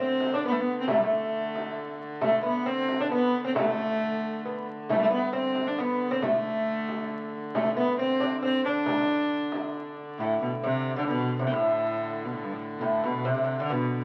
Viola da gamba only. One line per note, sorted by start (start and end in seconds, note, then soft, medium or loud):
0.00 0.36 C4 medium
0.34 0.45 D4 medium
0.46 0.54 B3 medium
0.52 0.62 A3 medium
0.61 0.79 B3 medium
0.80 0.89 C4 medium
0.90 0.99 A3 medium
0.98 1.06 G3 medium
1.04 2.01 A3 medium
2.23 2.43 A3 medium
2.45 2.69 B3 medium
2.68 3.02 C4 medium
3.01 3.12 D4 medium
3.13 3.43 B3 loud
3.46 3.56 C4 medium
3.58 4.64 A3 medium
4.91 5.03 G3 medium
4.91 4.96 A3 medium
5.01 5.12 A3 medium
5.13 5.33 B3 medium
5.36 5.69 C4 medium
5.67 5.81 D4 medium
5.80 6.15 B3 medium
6.13 6.25 C4 medium
6.23 7.33 A3 medium
7.55 7.76 A3 medium
7.77 7.98 B3 medium
8.00 8.40 C4 medium
8.44 8.64 C4 loud
8.65 9.93 D4 medium
10.19 10.39 A2 medium
10.42 10.51 B2 medium
10.65 10.95 C3 medium
10.98 11.02 D3 medium
11.08 11.38 B2 loud
11.42 11.54 C3 medium
11.52 12.26 A2 medium
12.25 12.35 B2 medium
12.33 12.45 A2 medium
12.43 12.54 G2 medium
12.53 12.61 A2 medium
12.78 12.85 B2 medium
12.84 13.07 A2 medium
13.05 13.30 B2 medium
13.29 13.61 C3 medium
13.62 13.73 D3 medium
13.72 14.04 B2 loud